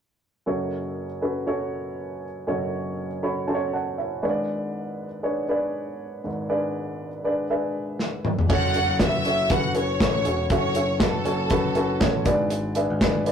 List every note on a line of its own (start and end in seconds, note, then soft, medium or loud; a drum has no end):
0.46 2.44 F#1 soft
0.46 2.44 F#2 soft
0.46 1.05 C#4 medium
0.46 1.05 F#4 medium
0.46 1.05 A4 medium
0.46 1.06 C#5 medium
1.22 1.42 C#4 medium
1.22 1.42 F#4 soft
1.22 1.42 A4 soft
1.22 1.42 B4 medium
1.47 2.24 C#4 medium
1.47 2.24 F#4 medium
1.47 2.24 A4 medium
1.47 2.24 C#5 medium
2.47 4.19 F#1 soft
2.47 4.19 F#2 soft
2.47 3.06 C#4 medium
2.47 3.06 F#4 medium
2.47 3.06 A4 medium
2.47 3.06 C#5 medium
3.23 3.43 C#4 medium
3.23 3.43 F#4 soft
3.23 3.43 A4 medium
3.23 3.43 C#5 medium
3.23 3.46 B5 soft
3.47 4.23 C#4 medium
3.47 3.73 F#4 medium
3.47 3.73 A4 medium
3.47 3.55 C5 soft
3.47 3.71 A5 medium
3.55 3.73 C#5 medium
3.73 3.96 C#5 soft
3.73 3.97 F#5 medium
3.73 3.97 A5 soft
3.98 4.46 E4 soft
3.98 4.22 C#5 soft
3.98 4.21 E5 medium
4.22 6.20 G#1 medium
4.22 6.20 G#2 medium
4.22 5.04 D4 medium
4.22 5.04 G#4 medium
4.22 5.04 B4 medium
4.22 4.30 C#5 medium
4.22 4.28 D5 medium
4.29 5.07 D5 medium
5.23 5.43 D4 medium
5.23 5.43 G#4 medium
5.23 5.43 B4 medium
5.23 5.44 C#5 medium
5.48 6.26 D4 medium
5.48 6.26 G#4 medium
5.48 6.26 B4 medium
5.48 6.26 D5 medium
6.24 8.21 G#1 medium
6.24 8.21 G#2 medium
6.49 7.08 D4 medium
6.49 7.08 G#4 medium
6.49 7.08 B4 medium
6.49 7.08 D5 medium
7.24 7.44 D4 medium
7.24 7.44 G#4 medium
7.24 7.44 B4 medium
7.24 7.45 D5 medium
7.50 8.27 D4 medium
7.50 8.27 G#4 medium
7.50 8.27 B4 medium
7.50 8.27 E5 medium
7.99 snare soft
8.25 mid tom medium
8.39 floor tom medium
8.49 8.86 F#1 medium
8.49 8.69 C#4 medium
8.49 8.70 F#4 medium
8.49 8.70 A4 medium
8.49 8.70 C#5 medium
8.49 8.97 F#5 medium
8.49 kick medium
8.49 crash medium
8.74 8.95 C#4 medium
8.74 8.95 F#4 medium
8.74 8.95 A4 soft
8.74 8.95 C#5 medium
8.74 closed hi-hat medium
8.89 9.47 F#1 medium
8.99 9.20 C#4 medium
8.99 9.20 F#4 medium
8.99 9.20 A4 medium
8.99 9.20 B4 medium
8.99 9.51 E5 medium
8.99 kick medium
8.99 snare medium
8.99 closed hi-hat medium
9.25 9.45 C#4 medium
9.25 9.45 F#4 medium
9.25 9.46 A4 medium
9.25 9.46 C#5 medium
9.25 closed hi-hat medium
9.50 9.97 F#1 medium
9.50 9.70 C#4 medium
9.50 9.70 F#4 medium
9.50 9.70 A4 medium
9.50 9.71 B4 medium
9.50 9.76 F#5 medium
9.50 kick loud
9.50 closed hi-hat medium
9.75 9.95 C#4 medium
9.75 9.95 F#4 medium
9.75 9.95 A4 medium
9.75 9.95 B4 medium
9.75 10.47 C#5 medium
9.75 closed hi-hat medium
10.00 10.24 A1 medium
10.00 10.20 C#4 medium
10.00 10.20 F#4 medium
10.00 10.20 A4 medium
10.00 10.21 B4 medium
10.00 kick medium
10.00 snare medium
10.00 closed hi-hat medium
10.25 10.49 E1 medium
10.25 10.45 C#4 medium
10.25 10.45 F#4 medium
10.25 10.45 A4 medium
10.25 10.46 C#5 medium
10.25 closed hi-hat medium
10.50 11.22 F#1 medium
10.50 10.70 C#4 medium
10.50 10.70 F#4 medium
10.50 10.71 A4 medium
10.50 10.98 C#5 medium
10.50 10.71 E5 medium
10.50 kick medium
10.50 closed hi-hat medium
10.75 10.95 C#4 medium
10.75 10.95 F#4 medium
10.75 10.95 A4 soft
10.75 10.96 E5 medium
10.75 closed hi-hat medium
11.00 11.20 C#4 medium
11.00 11.20 F#4 medium
11.00 11.20 A4 medium
11.00 12.27 A4 medium
11.00 11.21 B4 medium
11.00 kick loud
11.00 snare medium
11.00 closed hi-hat medium
11.25 11.49 F#1 medium
11.25 11.45 C#4 medium
11.25 11.45 F#4 medium
11.25 11.45 A4 medium
11.25 11.45 C#5 medium
11.25 closed hi-hat medium
11.50 11.97 F#1 medium
11.50 11.70 C#4 medium
11.50 11.70 F#4 medium
11.50 11.71 A4 medium
11.50 11.71 B4 medium
11.50 kick medium
11.50 closed hi-hat medium
11.75 11.96 C#4 medium
11.75 11.96 F#4 medium
11.75 11.96 A4 medium
11.75 11.96 B4 medium
11.75 closed hi-hat medium
12.00 12.24 A1 medium
12.00 12.20 C#4 medium
12.00 12.21 F#4 medium
12.00 12.21 A4 medium
12.00 12.21 C#5 medium
12.00 kick medium
12.00 snare medium
12.00 closed hi-hat medium
12.25 12.86 G#1 medium
12.25 12.97 G#2 medium
12.25 12.67 D4 medium
12.25 12.67 G#4 medium
12.25 12.67 B4 medium
12.25 12.67 D5 medium
12.25 kick medium
12.25 closed hi-hat medium
12.50 closed hi-hat medium
12.75 12.96 D4 medium
12.75 12.96 G#4 medium
12.75 12.96 B4 medium
12.75 12.96 E5 medium
12.75 closed hi-hat medium
12.90 13.32 G#1 medium
13.01 13.21 D4 medium
13.01 13.21 G#4 medium
13.01 13.21 B4 medium
13.01 13.21 D5 medium
13.01 kick medium
13.01 snare medium
13.01 closed hi-hat medium
13.26 13.32 D4 medium
13.26 13.32 G#4 medium
13.26 13.32 B4 medium
13.26 13.32 D5 medium
13.26 closed hi-hat medium